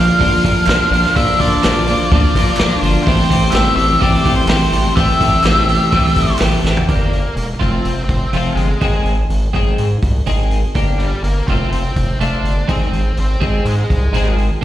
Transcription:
Already playing: A#1 D3 F3 A#3 D4 F4 F5
0.19 A#1 F3 A#3 D4 F4, kick, open hi-hat
0.43 A#1 F3 A#3 D4 F4, kick, open hi-hat
0.66 A#1 F3 A#3 D4 F4, snare, clap, open hi-hat
0.91 A#1 F3 A#3 D4 F4, open hi-hat
1.06 snare
1.16 A#1 F3 A#3 D4 F4 E5, kick, open hi-hat
1.38 A#1 F3 A#3 D4 F4 D5, kick, open hi-hat
1.62 A#1 F3 A#3 D4 F4, snare, clap, open hi-hat
1.86 F3 A#3 D4 F4, open hi-hat
2.10 D2 F3 A#3 D4 F4, kick, open hi-hat
2.35 A#1 F3 A#3 D4 F4, kick, open hi-hat
2.56 A#1 F3 A#3 D4, snare, clap, open hi-hat
2.61 F4
2.81 G1 F3 A#3 D4 F4, open hi-hat
3.03 A1 E3 A3 C4 G4 C5, kick
3.07 C3 G3 A3 E4, open hi-hat
3.29 A1 E3 A3 C4 G4, kick, open hi-hat
3.50 A1 E3 A3 C4 G4 E5, clap, open hi-hat
3.55 snare
3.74 A1 E3 A3 C4 G4 E5
3.78 open hi-hat
3.99 A1 E3 A3 C4 G4 D5, kick, open hi-hat
4.25 A1 E3 A3 C4 G4, kick, open hi-hat
4.36 C5
4.47 A1 E3 A3 C4 G4 C5, snare, clap, open hi-hat
4.72 A1 E3 A3 C4 G4, open hi-hat
4.95 A1 E3 A3 C4 G4 E5, kick, open hi-hat
5.20 A1 E3 A3 C4 G4, kick, open hi-hat
5.43 A1 E3 A3 C4 G4, snare, clap, open hi-hat
5.68 E3 A3 C4 G4, open hi-hat
5.92 C2 E3 A3 C4 G4, kick, open hi-hat
6.15 A1 E3 A3 C4 G4, kick, open hi-hat
6.38 A1 E3 A3 C4 G4, snare, clap, open hi-hat
6.64 A1 E3 A3 C4 G4, snare
6.77 floor tom
6.88 G1 A#3 D4 G4, kick, open hi-hat
7.13 open hi-hat
7.36 E1 A#3, open hi-hat
7.59 F1 F3 A3 C4 F4, kick, open hi-hat
7.84 F1, open hi-hat
8.04 C4
8.09 F1, kick, open hi-hat
8.32 F1 F3 A3 C4 F4, open hi-hat
8.55 G1 G#3, open hi-hat
8.81 G#1 D#3 G#3 C4 G#4, kick, open hi-hat
9.05 G#1, open hi-hat
9.30 G#1, open hi-hat
9.53 G#1 D#3 G#3 C4 G#4, kick, open hi-hat
9.78 G#2, open hi-hat
10.02 C2, kick, open hi-hat
10.26 G#1 D#3 G#3 C4 G#4, open hi-hat
10.51 open hi-hat
10.75 G1 A#3 D4 G4, kick, open hi-hat
10.98 G3, open hi-hat
11.23 G1 A#3, open hi-hat
11.47 F1 A3 C4 F4, kick, open hi-hat
11.72 F1 C4, open hi-hat
11.96 F1, kick, open hi-hat
12.20 F1 A3 C4 D4 F4, open hi-hat
12.44 G1, open hi-hat
12.68 G#1 D#3 G#3 C4 G#4, kick, open hi-hat
12.93 G#1, open hi-hat
13.17 G#1 C4, open hi-hat
13.40 G#1 D#3 G#3 C4 G#4, kick, open hi-hat
13.65 G#2 G#3, open hi-hat
13.90 C2, kick, open hi-hat
14.12 G#1 D#3 G#3 C4 G#4, open hi-hat
14.38 open hi-hat
14.61 A#3

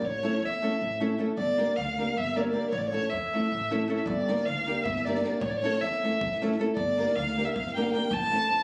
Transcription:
0.02 A1 C#5
0.23 A3 C#4 E4 A4
0.42 E2 E5
0.62 A3 C#4 E4 A4
0.82 A1
1.00 A3 C#4 E4 A4
1.18 A3 C#4 E4 A4
1.37 G1 D5
1.58 A#3 D4 G4 A#4
1.76 D2 F5
1.98 A#3 D4 G4 A#4
2.17 G1 E5
2.35 A#3 D4 G4 A#4 D5
2.40 C#5
2.49 D5
2.53 A#3 D4 G4 A#4
2.70 A1 C#5
2.78 D5
2.87 C#5
2.92 A3 C#4 E4 A4
3.09 E2 E5
3.34 A3 C#4 E4 A4
3.52 A1
3.71 A3 C#4 E4 A4
3.88 A3 C#4 E4 A4
3.97 E5
4.06 G1 D5, kick
4.27 A#3 D4 G4 A#4, snare
4.37 snare
4.45 D2 F5, snare
4.56 snare
4.66 A#3 D4 G4 A#4, snare
4.83 G1 E5, kick
4.96 snare
5.05 A#3 D4 G4 A#4 D5, snare
5.15 snare
5.24 A#3 D4 G4 A#4, snare
5.40 A1 C#5, kick
5.50 D5
5.56 C#5
5.63 A3 C#4 E4 A4, snare
5.73 snare
5.81 E2 E5, snare
5.92 snare
6.03 A3 C#4 E4 A4, snare
6.21 A1, kick
6.32 snare
6.41 A3 C#4 E4 A4, snare
6.51 snare
6.59 A3 C#4 E4 A4, snare
6.75 G1 D5, kick
6.97 A#3 D4 G4 A#4, snare
7.08 snare
7.16 D2 F5, snare
7.27 snare
7.37 A#3 D4 G4 A#4, snare
7.45 E5
7.54 G1 F5, kick
7.67 snare
7.75 A#3 D4 G4 A#4 G5, snare
7.82 F5, snare
7.89 A#3 G5, snare
7.94 D4 G4 A#4
8.11 A1 A5, kick
8.32 A3 C#4 E4 A4, snare
8.50 E2, snare

